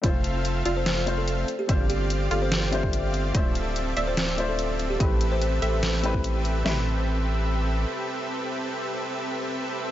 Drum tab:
CC |----------------|----------------|----------------|----------------|
HH |x-x-x-x-x-x-x-x-|x-x-x-x-x-x-x-x-|x-x-x-x-x-x-x-x-|x-x-x-x-x-x-x-x-|
SD |--------o-------|--------o-------|--------o-------|--------o-------|
FT |----------------|----------------|----------------|----------------|
BD |o---------------|o----------o----|o---------------|o----------o----|

CC |x---------------|----------------|
HH |----------------|----------------|
SD |o---------------|----------------|
FT |o---------------|----------------|
BD |----------------|----------------|